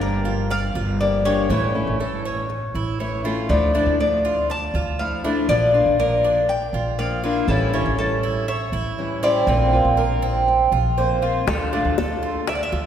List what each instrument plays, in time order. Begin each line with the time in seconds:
Already playing: upright bass G1, cuban tres D4
0.00 steel-string acoustic guitar F3 A#3 D4 G4, cuban tres A#4
0.25 cuban tres F4
0.50 cuban tres D5 F5, muted steel-string acoustic guitar stroke
0.75 upright bass G1, cuban tres F4
1.00 steel-string acoustic guitar F3 A#3 D4 G4, cuban tres D5
1.25 steel-string acoustic guitar F3 A#3 D4 G4, cuban tres C#4 C#5
1.50 upright bass A1, steel-string acoustic guitar E3 A3 C#4 E4, cuban tres C#4
1.74 steel-string acoustic guitar A3 C#4 E4
1.87 upright bass A1
1.99 steel-string acoustic guitar E3 A3 C#4 E4, cuban tres A4
2.25 cuban tres C#4
2.49 muted steel-string acoustic guitar stroke
2.75 upright bass A1, cuban tres E4
2.99 steel-string acoustic guitar E3 A3 C#4 E4, cuban tres C#5
3.24 steel-string acoustic guitar A3 C#4 E4, cuban tres F4
3.49 upright bass D2, steel-string acoustic guitar D3 F3 A3 D4 E4, cuban tres D5
3.74 steel-string acoustic guitar F3 A3 D4 E4, cuban tres D4
3.86 upright bass D2
3.99 steel-string acoustic guitar F3 A3 D4 E4, cuban tres D5
4.25 cuban tres F4
4.50 cuban tres D5 A5, muted steel-string acoustic guitar stroke
4.74 upright bass D2, cuban tres F4
4.99 steel-string acoustic guitar F3 A3 D4 E4, cuban tres F5
5.24 steel-string acoustic guitar F3 A3 D4 E4, cuban tres D4
5.49 upright bass A#1, steel-string acoustic guitar F3 A#3 D4 F4, cuban tres D4 D5
5.74 steel-string acoustic guitar A#3 D4 F4
5.86 upright bass A#1
5.99 steel-string acoustic guitar F3 A#3 D4 F4, cuban tres A#4 D5
6.24 cuban tres D4
6.48 cuban tres G5, muted steel-string acoustic guitar stroke
6.73 upright bass A#1, cuban tres F4
6.98 steel-string acoustic guitar F3 A#3 D4 F4, cuban tres D5 F5
7.24 steel-string acoustic guitar A#3 D4 F4, cuban tres E4
7.48 upright bass A1, steel-string acoustic guitar E3 G3 C#4 E4, cuban tres A4
7.74 steel-string acoustic guitar G3 C#4 E4, cuban tres C#4
7.86 upright bass A1
7.98 steel-string acoustic guitar E3 G3 C#4 E4, cuban tres A4
8.23 cuban tres E4
8.48 cuban tres C#5 E5, muted steel-string acoustic guitar stroke
8.72 upright bass A1, cuban tres E4
8.98 steel-string acoustic guitar E3 G3 C#4 E4
9.23 steel-string acoustic guitar G3 C#4 E4, cuban tres C4 D5
9.47 upright bass A#1, steel-string acoustic guitar D3 A#3 C4 F4, cuban tres C4
9.73 steel-string acoustic guitar A#3 C4 F4
9.85 upright bass A#1
9.97 steel-string acoustic guitar D3 A#3 C4 F4, cuban tres A#4
10.22 cuban tres C4
10.48 muted steel-string acoustic guitar stroke
10.72 upright bass A#1, cuban tres F4
10.98 steel-string acoustic guitar D3 A#3 C4 F4, cuban tres C5
11.22 steel-string acoustic guitar A#3 C4 F4, cuban tres F4
11.47 upright bass D2, steel-string acoustic guitar D3 A3 D4 F4, cuban tres A4, high bongo
11.72 steel-string acoustic guitar A3 D4 F4, cuban tres D4, high bongo
11.85 upright bass D2
11.97 steel-string acoustic guitar D3 A3 D4 F4, cuban tres A4, high bongo
12.23 cuban tres F4, high bongo
12.48 cuban tres D5 E5, muted steel-string acoustic guitar stroke, high bongo
12.55 cuban tres D5
12.63 cuban tres E5
12.72 upright bass D2, cuban tres F4, high bongo